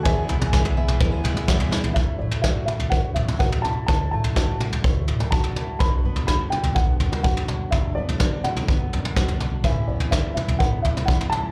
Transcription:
<<
  \new Staff \with { instrumentName = "Upright piano" } { \time 4/4 \key d \major \tempo 4 = 125 gis''2. r4 | e''8 d''8 e''8 e''8 fis''8 e''8 fis''8 a''8 | a''8 a''4 r4. a''4 | b''4 b''8 g''8 fis''4 fis''4 |
e''8 d''4 fis''2 r8 | e''8 d''8 e''8 e''8 fis''8 e''8 fis''8 a''8 | }
  \new Staff \with { instrumentName = "Five-string banjo" } { \time 4/4 \key d \major e''8 e'8 gis'8 e''8 e'8 gis'8 e''8 e'8 | r1 | r1 | r1 |
r1 | r1 | }
  \new Staff \with { instrumentName = "Steel-string acoustic guitar" } { \time 4/4 \key d \major << { <e gis b gis'>8 b8 gis8 b8 gis4 b8 gis8 | e'8 a8 fis'4 a4 fis'8 e'8 | e'8 a8 fis'4 a4 fis'8 e'8 | d'8 b8 fis'4 b4 fis'8 d'8 |
d'8 b8 fis'4 b4 fis'8 d'8 | <e b cis' e'>8 b8 e'4 b4 e'8 cis'8 | } \\ { e,4. e4. b,4 | d,4. d4 a,4. | r2 r8 a,4. | b,4. d4 fis,4. |
b,4. d4 fis,4. | a,4. e4 e,4. | } >> }
  \new Staff \with { instrumentName = "Twelve-string acoustic guitar" } { \clef bass \time 4/4 \key d \major <e, b, e gis b e'>8 <e gis b e'>8 <e, b, e gis b e'>16 <e gis b e'>8 <e gis b e'>8 <e gis b e'>16 <e gis b e'>8 <e, b, e gis b e'>8 <e gis b e'>16 <e gis b e'>16 | r1 | r1 | r1 |
r1 | r1 | }
  \new Staff \with { instrumentName = "Upright bass" } { \clef bass \time 4/4 \key d \major e,8 b,,4. e,8 e,4. | d,8 a,,4. d,8 a,,16 r16 a,,4 | d,8 a,,4. d,8 a,,8 cis,4 | b,,8 fis,4. b,,8 fis,16 r16 fis,4 |
b,,8 fis,4. b,,8 fis,8 b,,4 | a,,8 e,4. a,,8 e,16 r16 e,4 | }
  \new DrumStaff \with { instrumentName = "Drums" } \drummode { \time 4/4 <bd tomfh>8 tomfh16 toml16 <bd sn>16 tomfh8 toml16 <bd tomfh>8 <tomfh toml>16 toml16 <bd sn>16 tomfh16 sn16 tomfh16 | <bd tomfh>8. tomfh16 <bd sn>8 toml16 tomfh16 bd8 tomfh16 toml16 bd16 tomfh16 toml8 | <bd tomfh>8. tomfh16 <bd sn>8 toml16 tomfh16 bd8 tomfh16 toml16 bd16 tomfh16 toml8 | <bd tomfh>8. tomfh16 <bd sn>8 toml16 tomfh16 bd8 tomfh16 toml16 bd16 tomfh16 toml8 |
<bd tomfh>8. tomfh16 <bd sn>8 toml16 tomfh16 bd8 tomfh16 toml16 <bd sn toml>16 tomfh16 toml8 | <bd tomfh>8. tomfh16 <bd sn>8 toml16 tomfh16 bd8 tomfh16 toml16 bd16 tomfh16 toml8 | }
>>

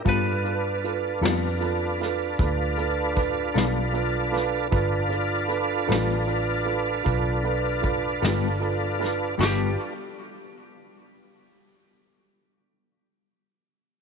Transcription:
<<
  \new Staff \with { instrumentName = "Lead electric guitar" } { \time 12/8 \key g \mixolydian \tempo 4. = 51 b'1.~ | b'1~ b'4 r4 | g'8 r1 r4. | }
  \new Staff \with { instrumentName = "Upright piano" } { \time 12/8 \key g \mixolydian <f' a' b'>8 <f' a' b'>8 <f' a' b'>8 <f' a' b'>8 <f' a' b'>8 <f' a' b'>8 <f' a' b'>8 <f' a' b'>8 <f' a' b'>8 <f' a' b'>8 <f' a' b'>8 <f' a' b'>8 | <f' a' b'>8 <f' a' d''>8 <f' a' b'>8 <f' a' b'>8 <f' a' b'>8 <f' a' b'>8 <f' a' b'>8 <f' a' b'>8 <f' a' b'>8 <f' a' b'>8 <f' a' b'>8 <f' a' b'>8 | <f' a' b'>8 r1 r4. | }
  \new Staff \with { instrumentName = "Tonewheel organ" } { \time 12/8 \key g \mixolydian <d' f' a' b'>1. | <d' f' a' b'>1. | <d' f' a' b'>8 r1 r4. | }
  \new Staff \with { instrumentName = "Clean electric guitar" } { \time 12/8 \key g \mixolydian <g b f' a'>8 r4 <g b f' a'>8 r2 r8 <g b f' a'>8 r4 | r4. <g b f' a'>8 r2 r8 <g b f' a'>8 r4 | <g b f' a'>8 r1 r4. | }
  \new Staff \with { instrumentName = "Fingered electric bass" } { \clef bass \time 12/8 \key g \mixolydian g,4. f,4. d,4. b,,4. | g,,4. a,,4. b,,4. g,,4. | g,,8 r1 r4. | }
  \new DrumStaff \with { instrumentName = "Drums" } \drummode { \time 12/8 <hh bd>8 hh8 hh8 <hh sn>8 hh8 <hh sn>8 <hh bd>8 hh8 <hh bd>8 <hh sn>8 hh8 <hh sn>8 | <hh bd>8 hh8 hh8 <hh sn>8 hh8 hh8 <hh bd>8 hh8 <hh bd>8 <hh sn>8 hh8 <hh sn>8 | <cymc sn>4. r4. r4. r4. | }
>>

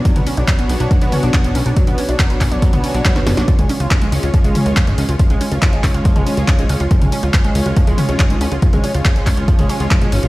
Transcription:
<<
  \new Staff \with { instrumentName = "Synth arpeggio sound" } { \time 4/4 \key cis \phrygian \tempo 4 = 140 fis16 b16 cis'16 d'16 fis16 b16 cis'16 d'16 fis16 b16 cis'16 d'16 fis16 b16 cis'16 d'16 | fis16 b16 cis'16 d'16 fis16 b16 cis'16 d'16 fis16 b16 cis'16 d'16 fis16 b16 cis'16 d'16 | eis16 gis16 cis'16 eis'16 eis16 gis16 cis'16 eis'16 eis16 gis16 cis'16 eis'16 eis16 gis16 cis'16 eis'16 | eis16 gis16 cis'16 eis'16 eis16 gis16 cis'16 eis'16 eis16 gis16 cis'16 eis'16 eis16 gis16 cis'16 eis'16 |
eis16 gis16 cis'16 eis'16 eis16 gis16 cis'16 eis'16 eis16 gis16 cis'16 eis'16 eis16 gis16 cis'16 eis'16 | eis16 gis16 cis'16 eis'16 eis16 gis16 cis'16 eis'16 eis16 gis16 cis'16 eis'16 eis16 gis16 cis'16 eis'16 | }
  \new Staff \with { instrumentName = "Analog synth bass" } { \clef bass \time 4/4 \key cis \phrygian r16 b,,16 r16 b,,16 r8 b,,16 b,,16 r16 b,,16 r16 b,,16 r16 fis,,16 b,,16 b,,16 | r16 b,,16 r16 b,,16 r8 b,,16 b,,16 r16 b,,16 r16 b,,16 r16 fis,,16 fis,,16 b,,16 | r16 cis,16 r16 cis,16 r8 cis,16 cis,16 r16 cis,16 r16 cis,16 r16 gis,,16 cis,16 cis,16 | r16 cis,16 r16 cis,16 r8 cis,16 cis,16 r16 cis,16 r16 cis,16 r16 gis,,16 cis,16 cis,16 |
r16 cis,16 r16 cis,16 r8 cis,16 cis,16 r16 cis,16 r16 cis,16 r16 gis,,16 cis,16 cis,16 | r16 cis,16 r16 cis,16 r8 cis,16 cis,16 r16 cis,16 r16 cis,16 r16 b,,16 gis,,16 b,,16 | }
  \new DrumStaff \with { instrumentName = "Drums" } \drummode { \time 4/4 <hh bd>16 <hh toml>16 hho16 hh16 <hc hh bd>16 hh16 hho16 hh16 <hh bd>16 hh16 <hho toml>16 hh16 <hc hh bd>16 hh16 hho16 hh16 | <hh bd>16 hh16 hho16 hh16 <hc hh bd>16 hh16 <hc hho bd>16 hh16 <hh bd>16 <hh toml>16 hho16 hh16 <hc hh bd sn>16 <hh sn>16 <hho sn toml>16 <hh sn>16 | <hh bd>16 <hh toml>16 hho16 hh16 <hc hh bd>16 hh16 hho16 hh16 <hh bd>16 hh16 <hho toml>16 hh16 <hc hh bd>16 hh16 hho16 hh16 | <hh bd>16 hh16 hho16 hh16 <hc hh bd>16 hh16 <hc hho bd>16 hh16 <hh bd>16 <hh toml>16 hho16 hh16 <hc hh bd>16 hh16 hho16 hh16 |
<hh bd>16 <hh toml>16 hho16 hh16 <hc hh bd>16 hh16 hho16 hh16 <hh bd>16 hh16 <hho toml>16 hh16 <hc hh bd>16 hh16 hho16 hh16 | <hh bd>16 <hh toml>16 hho16 hh16 <hc hh bd>16 hh16 <hc hho bd>16 hh16 <hh bd>16 <hh toml>16 hho16 hh16 <hc hh bd>16 hh16 hho16 hh16 | }
>>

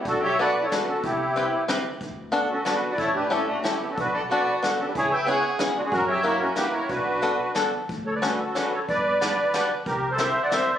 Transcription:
<<
  \new Staff \with { instrumentName = "Accordion" } { \time 3/4 \key b \minor \tempo 4 = 184 <fis' a'>8 <cis'' e''>8 <b' d''>8. <a' cis''>16 <fis' b'>8 <fis' a'>8 | <e' g'>2 r4 | r4. <fis' a'>8 <fis' b'>8. <b' d''>16 | <a' cis''>8 <g' b'>8 <e' a'>8 <d' fis'>8 <e' g'>8 <e' g'>16 <fis' a'>16 |
<fis' b'>8 <d'' fis''>8 <b' d''>8. r8. <fis' a'>16 <g' b'>16 | <gis' cis''>8 <e'' g''>8 <cis'' fis''>8. r8. <d' fis'>16 <fis' gis'>16 | <fis' ais'>8 <cis'' e''>8 <ais' cis''>8 <fis' ais'>8 <g' b'>8 <ais' cis''>8 | <fis' b'>2 r4 |
\key d \major r8 <a' cis''>16 <b' d''>16 <fis' b'>8 <fis' a'>8 <fis' b'>8 <a' cis''>8 | <b' d''>2~ <b' d''>8 r8 | <g' bes'>8. <a' c''>16 <c'' e''>8. <d'' fis''>16 <c'' e''>8. d''16 | }
  \new Staff \with { instrumentName = "Five-string banjo" } { \time 3/4 \key b \minor r4 <b d' fis' a'>8 r8 <b d' fis' a'>8 r8 | r4 <c' e' g' b'>8 r8 <c' e' g' b'>8 r8 | r4 <b d' fis' a'>8 r8 <b d' fis' a'>8 r8 | r4 <cis' e' g' a'>8 r8 <cis' e' g' a'>8 r8 |
r4 <b d' fis' a'>8 r8 <b d' fis' a'>8 r8 | r4 <b cis' e' gis'>8 r8 <b cis' e' gis'>8 r8 | r4 <ais e' fis' g'>8 r8 <ais e' fis' g'>8 r8 | r4 <b d' fis' a'>8 r8 <b d' fis' a'>8 r8 |
\key d \major r4 <cis' d' fis' a'>8 r8 <cis' d' fis' a'>8 r8 | r4 <d' fis' g' b'>8 r8 <d' fis' g' b'>8 r8 | r4 <c' e' g' bes'>8 r8 <c' e' g' bes'>8 r8 | }
  \new Staff \with { instrumentName = "Violin" } { \time 3/4 \key b \minor d'8 g'8 fis'8. e'16 d'8 cis'8 | b2 r4 | r4. cis'8 d'8. fis'16 | e'8 d'8 cis'8 a8 cis'8 b16 cis'16 |
d'8 a'8 fis'8. r8. cis'16 d'16 | e'8 b'8 gis'8. r8. gis16 cis'16 | cis'8 g'8 e'8 cis'8 e'8 e'8 | d'2 r4 |
\key d \major r2. | r2. | r2. | }
  \new Staff \with { instrumentName = "Upright bass" } { \clef bass \time 3/4 \key b \minor b,,2 r4 | c,2 r4 | d,2 r4 | a,,2 r4 |
b,,2 r4 | cis,2 r4 | fis,2 r4 | b,,2 r4 |
\key d \major d,2 r4 | g,,2 r4 | c,2 r4 | }
  \new DrumStaff \with { instrumentName = "Drums" } \drummode { \time 3/4 <hh bd>4 hh4 <hh sn>4 | <hh bd>4 hh4 <hh sn>4 | <hh bd>4 hh4 <hh sn>4 | <hh bd>4 hh4 <hh sn>4 |
<hh bd>4 hh4 <hh sn>4 | <hh bd>4 hh4 <hh sn>4 | <hh bd>4 hh4 <hh sn>4 | <hh bd>4 hh4 <hh sn>4 |
<hh bd>4 <hh sn>4 <hh sn>4 | <hh bd>4 <hh sn>4 <hh sn>4 | <hh bd>4 <hh sn>4 <hh sn>4 | }
>>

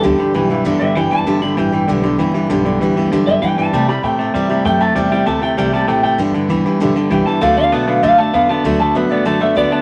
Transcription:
<<
  \new Staff \with { instrumentName = "Clean electric guitar" } { \time 4/4 \key g \major \tempo 4 = 195 g'2 r8 e''8 g''8 a''8~ | a''8 b''8 g''4 r2 | r2 r8 e''8 g''8 a''8~ | a''8 b''8 g''4 r4 g''8 a''8 |
g''8 g''8 a''8 g''8 g''8 a''8 g''8 g''8 | r2. g''8 a''8 | f''8 f''8 a''8 f''8 f''8 a''8 f''8 a''8 | r8 a''8 e''8 d''8 a''8 e''8 d''8 a''8 | }
  \new Staff \with { instrumentName = "Steel-string acoustic guitar" } { \time 4/4 \key g \major <g, d e g b g'>8 <e g b g'>8 <e g b g'>8 <e g b g'>8 <g, d e g b g'>8 <e g b g'>8 <e g b g'>8 <e g b g'>8 | <g, d e g b g'>8 <e g b g'>8 <e g b g'>8 <e g b g'>8 <g, d e g b g'>8 <e g b g'>8 <e g b g'>8 <e g b g'>8 | <g, d e g b g'>8 <e g b g'>8 <e g b g'>8 <e g b g'>8 <g, d e g b g'>8 <e g b g'>8 <e g b g'>8 <e g b g'>8 | <c e a e' g'>8 <a e' g'>8 <e a e' g'>8 <a e' g'>8 <c e a e' g'>8 <a e' g'>8 <e a e' g'>8 <a e' g'>8 |
<c e a e' g'>8 <a e' g'>8 <e a e' g'>8 <a e' g'>8 <c e a e' g'>8 <a e' g'>8 <e a e' g'>8 <a e' g'>8 | <g, d e g b g'>8 <e g b g'>8 <e g b g'>8 <e g b g'>8 <g, d e g b g'>8 <e g b g'>8 <e g b g'>8 <e g b g'>8 | <d fis a b fis'>8 <a b fis'>8 <fis a b fis'>8 <a b fis'>8 <d fis a b fis'>8 <a b fis'>8 <fis a b fis'>8 <a b fis'>8 | <d fis a b fis'>8 <a b fis'>8 <fis a b fis'>8 <a b fis'>8 <d fis a b fis'>8 <a b fis'>8 <fis a b fis'>8 <a b fis'>8 | }
  \new Staff \with { instrumentName = "Clean electric guitar" } { \clef bass \time 4/4 \key g \major <g, d>8 <g, d>8 <g, e>8 <g, e>8 <g, d>8 <g, d>8 <g, e>8 <g, e>8 | <g, d>8 <g, d>8 <g, e>8 <g, e>8 <g, d>8 <g, d>8 <g, e>8 <g, e>8 | <g, d>8 <g, d>8 <g, e>8 <g, e>8 <g, d>8 <g, d>8 <g, e>8 <g, e>8 | <c g>8 <c g>8 <c a>8 <c a>8 <c g>8 <c g>8 <c a>8 <c a>8 |
<c g>8 <c g>8 <c a>8 <c a>8 <c g>8 <c g>8 <c a>8 <c a>8 | <g, d>8 <g, d>8 <g, e>8 <g, e>8 <g, d>8 <g, d>8 <g, e>8 <g, e>8 | <d a>8 <d a>8 <d b>8 <d b>8 <d a>8 <d a>8 <d b>8 <d b>8 | <d a>8 <d a>8 <d b>8 <d b>8 <d a>8 <d a>8 <d b>8 <d b>8 | }
  \new Staff \with { instrumentName = "Upright bass" } { \clef bass \time 4/4 \key g \major d,8 r8 b,,4 g,,8 r8 fis,,4 | g,,4 a,,4 b,,4 g,,4 | b,,4 d,4 fis,4 g,4 | c4 a,4 g,4 fis,4 |
e,4 d,4 c,4 a,,4 | g,,8 r8 d,8 r8 b,,8 r8 c,8 r8 | d,4 b,,4 fis,4 e,4 | d,4 g,4 fis,4 d,4 | }
>>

